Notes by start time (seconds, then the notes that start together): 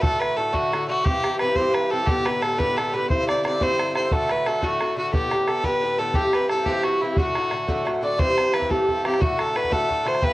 0.01 A2 D3 A3 F#4 A4, bodhran
0.20 A2 D3 A3 F#4 B4, bodhran
0.36 A2 D3 A3 F#4 A4
0.52 A2 D3 A3 F#4, bodhran
0.71 A2 D3 A3 F#4, bodhran
0.88 A2 D3 A3 F#4
1.04 G2 E3 C4 G4, bodhran
1.23 G2 E3 C4 G4, bodhran
1.39 G2 E3 C4 G4 B4, bodhran
1.56 G2 E3 C4 G4 C5, bodhran
1.74 G2 E3 C4 G4 B4, bodhran
1.90 G2 E3 C4 G4 A4
2.07 A2 D3 B3 G4, bodhran
2.25 A2 D3 B3 G4 B4, bodhran
2.41 A2 D3 B3 G4 A4, bodhran
2.58 A2 D3 B3 G4 B4, bodhran
2.76 A2 D3 B3 G4 A4, bodhran
2.92 A2 D3 B3 G4 B4
3.08 G2 D3 C4 E4 C5, bodhran
3.27 G2 D3 C4 E4 D5, bodhran
3.43 G2 D3 C4 E4 D5, bodhran
3.60 G2 D3 C4 E4 C5, bodhran
3.77 G2 D3 C4 E4, bodhran
3.94 G2 D3 C4 E4 C5, bodhran
4.10 A2 D3 A3 F#4 A4, bodhran
4.29 A2 D3 A3 F#4 B4, bodhran
4.45 A2 D3 A3 F#4 A4, bodhran
4.61 A2 D3 A3 F#4, bodhran
4.79 A2 D3 A3 F#4, bodhran
4.95 A2 D3 A3 F#4
5.11 A2 D3 B3 G4, bodhran
5.31 A2 D3 B3 G4, bodhran
5.47 A2 D3 B3 G4 A4, bodhran
5.63 A2 D3 B3 G4 B4, bodhran
5.81 A2 D3 B3 G4
5.98 A2 D3 B3 G4 A4
6.14 G2 E3 C4 G4, bodhran
6.33 G2 E3 C4 G4 B4, bodhran
6.50 G2 E3 C4 G4 A4, bodhran
6.66 G2 E3 C4 G4, bodhran
6.83 G2 E3 C4 F#4, bodhran
6.88 G4
7.02 G2 E3 C4 E4 G4
7.17 A2 D3 A3 F#4, bodhran
7.35 A2 D3 A3 F#4, bodhran
7.51 A2 D3 A3 F#4, bodhran
7.67 A2 D3 A3 F#4, bodhran
7.85 A2 D3 A3 F#4, bodhran
8.01 A2 D3 A3 F#4 D5
8.18 G2 E3 C4 G4 C5, bodhran
8.36 G2 E3 C4 G4, bodhran
8.52 G2 E3 C4 G4 B4, bodhran
8.62 bodhran
8.69 G2 E3 C4 G4 A4, bodhran
8.86 G2 E3 C4 G4, bodhran
9.03 G2 E3 C4 G4, bodhran
9.14 bodhran
9.19 A2 D3 A3 F#4, bodhran
9.37 A2 D3 A3 F#4 A4, bodhran
9.54 A2 D3 A3 F#4 B4, bodhran
9.64 bodhran
9.69 A2 D3 A3 F#4 A4, bodhran
9.88 A2 D3 A3 F#4, bodhran
10.04 A2 D3 A3 F#4, bodhran
10.08 C5
10.15 bodhran
10.21 G2 E3 B3 G4 B4, bodhran